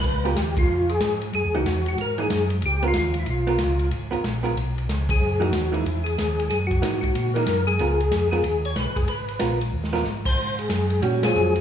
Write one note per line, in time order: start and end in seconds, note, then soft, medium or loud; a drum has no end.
0.00 0.35 C#2 medium
0.00 0.27 B4 loud
0.00 kick medium
0.00 crash medium
0.25 0.35 B3 medium
0.25 0.36 F4 medium
0.25 0.58 G4 loud
0.25 0.36 A#4 medium
0.25 ride soft
0.36 0.68 D#2 loud
0.36 snare medium
0.36 hi-hat pedal medium
0.36 ride medium
0.57 0.91 F4 loud
0.57 kick medium
0.57 ride medium
0.69 1.00 F2 medium
0.89 1.19 G#4 loud
0.89 ride soft
1.00 1.32 G#2 medium
1.00 snare medium
1.00 hi-hat pedal soft
1.00 ride medium
1.22 ride soft
1.33 1.43 F#2 medium
1.33 1.55 G#4 medium
1.33 ride soft
1.44 1.55 E2 medium
1.54 1.65 C#2 medium
1.54 1.65 E3 medium
1.54 1.65 A#3 medium
1.54 1.65 D#4 medium
1.54 1.87 F#4 loud
1.54 ride soft
1.65 1.96 E2 loud
1.65 snare medium
1.65 hi-hat pedal medium
1.65 ride medium
1.86 1.98 F#4 medium
1.86 ride soft
1.97 2.29 G#2 medium
1.97 ride medium
2.01 2.19 A#4 medium
2.18 2.29 E3 medium
2.18 2.29 A#3 medium
2.18 2.30 D#4 medium
2.18 2.49 G#4 medium
2.18 ride soft
2.30 2.61 F#2 medium
2.30 snare medium
2.30 hi-hat pedal medium
2.30 ride medium
2.50 ride soft
2.62 2.93 C#2 medium
2.62 2.85 G4 medium
2.62 ride medium
2.82 2.93 B3 medium
2.82 2.94 F4 medium
2.82 2.94 A#4 medium
2.82 ride soft
2.88 2.97 F4 medium
2.94 3.26 D#2 loud
2.94 snare medium
2.94 hi-hat pedal medium
2.94 ride medium
2.98 3.18 F4 medium
3.14 ride soft
3.20 3.29 E4 medium
3.26 3.58 B1 medium
3.26 ride medium
3.30 3.89 F4 medium
3.47 3.58 B3 medium
3.47 3.58 F4 medium
3.47 3.59 A#4 medium
3.47 ride soft
3.58 3.91 C#2 medium
3.58 snare medium
3.58 hi-hat pedal medium
3.58 ride medium
3.79 ride soft
3.91 4.11 G#1 medium
3.91 ride medium
4.11 4.19 G#1 soft
4.11 4.22 B3 medium
4.11 4.22 F4 medium
4.11 4.23 A#4 medium
4.11 ride soft
4.24 4.55 A#1 medium
4.24 snare medium
4.24 hi-hat pedal medium
4.24 ride medium
4.43 4.54 B3 medium
4.43 4.55 F4 medium
4.43 4.55 A#4 medium
4.43 ride soft
4.56 4.87 B1 medium
4.56 ride medium
4.78 ride soft
4.89 5.20 C#2 medium
4.89 snare medium
4.89 hi-hat pedal medium
4.89 ride medium
5.09 5.43 G#4 medium
5.09 kick medium
5.09 ride medium
5.21 5.52 F#2 medium
5.40 5.51 E3 medium
5.40 5.51 A#3 medium
5.40 5.52 D#4 medium
5.40 5.74 F#4 medium
5.40 ride soft
5.53 5.84 D#2 loud
5.53 snare medium
5.53 hi-hat pedal medium
5.53 ride medium
5.71 5.83 E3 medium
5.71 5.84 A#3 medium
5.71 5.84 D#4 medium
5.71 6.03 E4 medium
5.71 ride soft
5.85 6.17 E2 medium
5.85 ride medium
6.04 6.49 G#4 medium
6.04 ride soft
6.18 6.49 D#2 medium
6.18 snare medium
6.18 hi-hat pedal medium
6.18 ride medium
6.40 ride soft
6.50 6.81 F#2 medium
6.50 6.59 G#4 medium
6.50 snare soft
6.50 ride medium
6.67 6.99 F#4 medium
6.67 kick medium
6.67 ride soft
6.82 7.14 G#2 medium
6.82 7.01 E3 soft
6.82 7.01 A#3 medium
6.82 7.01 D#4 medium
6.82 snare medium
6.82 hi-hat pedal medium
6.82 ride medium
7.01 7.35 F#4 loud
7.01 kick medium
7.01 ride soft
7.15 7.46 A#2 medium
7.15 ride medium
7.34 7.46 E3 medium
7.34 7.46 A#3 medium
7.34 7.47 D#4 medium
7.34 7.65 A#4 loud
7.34 ride soft
7.46 7.78 F#2 medium
7.46 snare medium
7.46 hi-hat pedal medium
7.46 ride medium
7.67 8.28 G#4 loud
7.67 ride soft
7.79 8.10 C#2 medium
7.79 7.98 B3 medium
7.79 7.99 F4 medium
7.79 7.99 A#4 medium
7.79 ride medium
8.00 ride soft
8.11 8.43 F2 medium
8.11 snare medium
8.11 hi-hat pedal medium
8.11 ride medium
8.31 8.43 B3 medium
8.31 8.43 F4 medium
8.31 8.62 G#4 loud
8.31 8.43 A#4 medium
8.31 ride soft
8.43 8.75 D#2 medium
8.43 ride medium
8.65 8.76 C#5 loud
8.65 ride soft
8.76 8.86 B1 medium
8.76 8.97 B4 loud
8.76 snare medium
8.76 hi-hat pedal medium
8.76 ride medium
8.86 8.97 G#1 medium
8.96 9.07 F1 medium
8.96 9.09 G#4 loud
8.96 kick medium
8.96 ride soft
9.07 9.39 G#1 medium
9.07 9.58 B4 medium
9.07 ride medium
9.28 ride soft
9.39 9.72 A#1 medium
9.39 9.59 B3 medium
9.39 9.59 F4 medium
9.39 9.59 A#4 medium
9.39 snare medium
9.39 hi-hat pedal medium
9.39 ride medium
9.61 ride soft
9.72 10.04 D#2 medium
9.84 snare medium
9.93 10.04 B3 medium
9.93 10.04 F4 medium
9.93 10.04 A#4 medium
9.93 snare medium
10.04 10.37 G#1 medium
10.04 snare medium
10.04 hi-hat pedal medium
10.25 10.59 C5 loud
10.25 kick medium
10.25 crash medium
10.37 10.68 G#2 medium
10.59 11.04 G#4 medium
10.59 ride soft
10.69 11.01 F#2 medium
10.69 snare medium
10.69 hi-hat pedal medium
10.69 ride medium
10.90 ride soft
11.02 11.33 A#2 medium
11.02 11.21 G3 medium
11.02 11.21 C#4 medium
11.02 11.12 F#4 medium
11.02 11.21 F#4 medium
11.02 ride medium
11.23 11.51 F#3 medium
11.23 11.51 C4 medium
11.23 11.52 F4 medium
11.23 11.54 G#4 loud
11.23 snare medium
11.23 ride medium
11.34 11.61 F2 medium
11.34 hi-hat pedal medium
11.55 ride soft